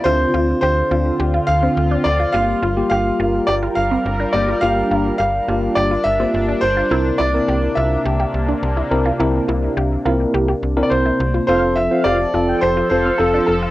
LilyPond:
<<
  \new Staff \with { instrumentName = "Analog polysynth" } { \time 4/4 \key f \major \tempo 4 = 105 r1 | r1 | r1 | r1 |
r1 | f''16 r8 f''16 f''16 r8 g''16 r8 f''8. r8. | }
  \new Staff \with { instrumentName = "Grand piano" } { \time 4/4 \key f \major c''4 c''4. f''4 d''8 | f''4 f''4 d''8 f''4 d''8 | f''4 f''4 d''8 e''4 c''8~ | c''8 d''4 e''2~ e''8~ |
e''2~ e''8.~ e''32 d''32 c''4 | c''8 e''8 d''4 c''8 c''8 a'8 a'8 | }
  \new Staff \with { instrumentName = "Synth arpeggio sound" } { \time 4/4 \key f \major f'8 f'8 g'8 f'8 g'16 f'8 c'8 d'8 f'16 | f'8 f'8 g'8 f'8 g'16 f'8 c'8 d'8 f'16 | f'8 f'8 g'8 f'8 g'16 f'8 c'8 d'8 f'16 | e'8 e'8 g'8 f'8 g'16 g'8 d'8 e'8 f'16 |
e'8 e'8 g'8 f'8 g'16 g'8 d'8 e'8 f'16 | f'8 f'8 g'8 f'8 g'16 f'8 c'8 d'8 f'16 | }
  \new Staff \with { instrumentName = "Tine electric piano" } { \time 4/4 \key f \major <c' d' f'>4 r8 <c' d' f'>8. r8 <c' d' f'>8. r8 | <bes f' g'>8 r16 <bes f' g'>4~ <bes f' g'>16 r4. <bes f' g'>16 r16 | <bes f' g'>4 r8 <bes f' g'>8. r8 <bes f' g'>8. r8 | <c' e' bes'>8 r16 <c' e' bes'>4~ <c' e' bes'>16 r4. <c' e' bes'>16 r16 |
<c' e' bes'>4 r8 <c' e' bes'>8. r8 <c' e' bes'>8. r8 | <c' f' a'>8 r16 <c' f' c''>8 r16 <c' f' a'>8 r8 <c' f' a'>16 r16 <c' f' a'>8 r8 | }
  \new Staff \with { instrumentName = "Analog synth pad" } { \time 4/4 \key f \major << { f'1 | bes'1 | d'1~ | d'1~ |
d'1 | a'1 | } \\ { <d c'>1 | g1~ | g1 | <c bes>1~ |
<c bes>1 | <f c'>1 | } >> }
  \new Staff \with { instrumentName = "FM bass" } { \clef bass \time 4/4 \key f \major d,8 d,8 d,8 d,8 d,8 d,8 d,8 d,8 | g,,8 g,,8 g,,8 g,,8 g,,8 g,,8 g,,8 g,,8 | g,,8 g,,8 g,,8 g,,8 g,,8 g,,8 g,,8 g,,8 | c,8 c,8 c,8 c,8 c,8 c,8 c,8 c,8 |
c,8 c,8 c,8 c,8 c,8 c,8 c,8 c,8 | f,,4 f,,8 f,,8 f,,8 f,,8 f,,8 f,,8 | }
>>